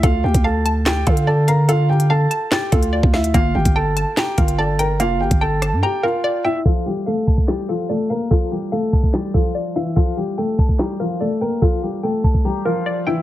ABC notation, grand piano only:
X:1
M:4/4
L:1/8
Q:1/4=145
K:Gdor
V:1 name="Grand piano"
[Ff] [Gg] [Aa]2 [Gg] [Ff] [Aa] [Bb] | [Ff] [Gg] [Aa]2 [Gg] [Ff]2 [Ee] | [Ff] [Gg] [Aa]2 [Gg] [Ff] [Aa] [Bb] | [Ff] [Gg] [Aa]2 [Gg] [Ff]2 [Ee] |
[F,F] [G,G] [A,A]2 [G,G] [F,F] [A,A] [B,B] | [F,F] [G,G] [A,A]2 [G,G] [F,F]2 [E,E] | [F,F] [G,G] [A,A]2 [G,G] [F,F] [A,A] [B,B] | [F,F] [G,G] [A,A]2 [G,G] [F,F]2 [E,E] |]